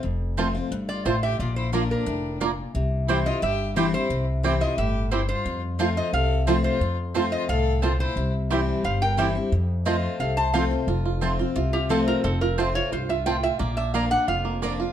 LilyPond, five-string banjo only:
\new Staff \with { instrumentName = "Five-string banjo" } { \time 4/4 \key f \major \tempo 4 = 177 r4 <c' f'>8 r4. <c' f'>8 r8 | r4 <bes d' f'>8 r4. <bes d' f'>8 r8 | r4 <c' e' g'>8 r4. <c' e' g'>8 r8 | r4 <c' e' g'>8 r4. <c' e' g'>8 r8 |
r4 <c' f'>8 r4. <c' f'>8 r8 | r4 <c' f'>8 r4. <c' f'>8 r8 | r4 <c' e' g'>8 r4. <c' e' g'>8 r8 | r4 <c' f'>8 r4. <c' f'>8 r8 |
f'8 f'8 c'8 f'8 f'8 f'8 c'8 f'8 | c'8 f'8 f'8 f'8 f'8 f'8 f'8 f'8 | bes8 d'8 bes8 d'8 f'8 bes8 d'8 f'8 | }